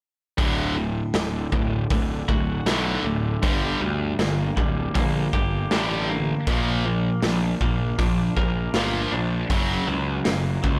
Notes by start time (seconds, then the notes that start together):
0.38 D1 D2 A2 D3, kick, open hi-hat
0.76 D2 A2
1.14 D1 D2 A2 D3, snare, open hi-hat
1.52 D1 D2 A2, kick
1.90 D1 D2 A2 D3, kick, open hi-hat
2.28 D1 D2 A2 F#4, kick
2.66 B1 D2 A2 D3 A3, snare, open hi-hat
3.04 D1 D2 A2 D3
3.42 G1 G2 D3 G3, kick, open hi-hat
3.80 D2 G2 D3 G3
4.19 G1 G2 D3 A#3, snare, open hi-hat
4.56 D1 G2 D3 G3, kick
4.94 A#1 G2 D3 A#3, kick, open hi-hat
5.33 G1 G2 D3 G4, kick
5.71 A1 G2 D3 G3 D4, snare, open hi-hat
6.10 G2 D3 A#3
6.47 A#1 A#2 F3 A#3, kick, open hi-hat
6.85 A#2 F3 A#3
7.23 A#1 A#2 F3 D4, snare, open hi-hat
7.61 A#1 A#2 F3 A#3, kick
7.98 A#1 A#2 F3 D4, kick, open hi-hat
8.36 A#1 A#2 F3 A#4, kick
8.74 G1 A#2 F3 A#3 F4, snare, open hi-hat
9.12 A#1 A#2 F3 D4
9.50 F#1 F#2 C#3 F#3, kick, open hi-hat
9.87 C#2 F#2 C#3 F#3
10.24 F#1 F#2 C#3 A#3, snare, open hi-hat
10.63 C#2 F#2 C#3 F#3, kick